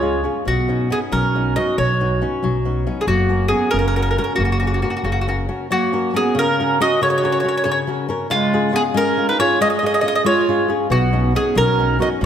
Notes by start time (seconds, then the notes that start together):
Already playing: C#2 G#3 F4 C#5
0.02 C#4 F4 G#4
0.24 C#4 F4 G#4
0.45 B1 B2 B3 F#4
0.68 B3 C#4 D#4
0.90 B3 C#4 D#4 G#4
1.12 B1 F#3 C#4 A#4
1.35 B3 C#4 D#4
1.56 B3 C#4 D#4 F#4 D#5
1.78 B1 F#3 F#4 C#5
2.00 B3 C#4 D#4
2.21 B3 C#4 D#4
2.43 B1 F#3
2.65 B3 C#4 D#4
2.87 B3 C#4 D#4
3.01 B3 G#4
3.07 F#1 F#3 A#3 F#4
3.29 C#4 F#4 A#4
3.48 B3 C#4 F#4 G#4
3.53 A#4
3.71 F#1 C#3 C#4 A#4
3.79 A#4
3.88 A#4
3.96 C#4 F#4 A#4
4.02 A#4
4.11 A#4
4.18 C#4 F#4 A#4
4.24 A#4
4.35 F#1 A#3 F#4
4.40 C#3
4.45 F#4
4.52 F#4
4.60 C#4 F#4 A#4
4.67 F#4
4.74 F#4
4.82 C#4 F#4 A#4
4.90 F#4
4.97 F#4
5.03 F#1 C#3 F#4
5.12 F#4
5.21 F#4
5.27 C#4 F#4 A#4
5.49 C#4 F#4 A#4
5.69 F#3 A#3 F#4
5.93 C#4 F#4 A#4
6.13 B3 C#4 F#4 G#4 A#4
6.35 C#3 C#4
6.39 A#4
6.60 C#4 F#4 A#4
6.80 C#4 F#4 A#4 D#5
7.01 C#3 F#4 C#5
7.10 C#5
7.18 C#5
7.23 C#4 F#4 A#4 C#5
7.32 C#5
7.40 C#4 C#5
7.44 F#4 A#4
7.48 C#5
7.57 C#5
7.64 C#3 C#5
7.71 C#5
7.87 C#4 F#4 A#4
8.09 C#4 F#4 A#4
8.30 C#3 G#3 F4
8.53 C#4 F4 G#4
8.73 B3 C#4 F4 G#4
8.94 G#3 C#4 A#4
9.17 C#4 F4 G#4
9.29 D#4 B4
9.39 C#4 F4 G#4 C#5
9.61 G#3 G#4 D#5
9.70 D#5
9.79 C#4 F4 D#5
9.84 G#4 D#5
9.94 D#5
10.01 C#4 F4 G#4 D#5
10.08 D#5
10.15 D#5
10.24 G#3 F4 C#5
10.48 C#4 F4 G#4
10.68 C#4 F4 G#4
10.90 B1 B2 B3 F#4
11.13 B3 C#4 D#4
11.35 B3 C#4 D#4 G#4
11.55 B1 F#3 C#4 A#4
11.79 B3 C#4 D#4
11.99 B3 C#4 D#4 F#4 D#5
12.21 B1 F#3 F#4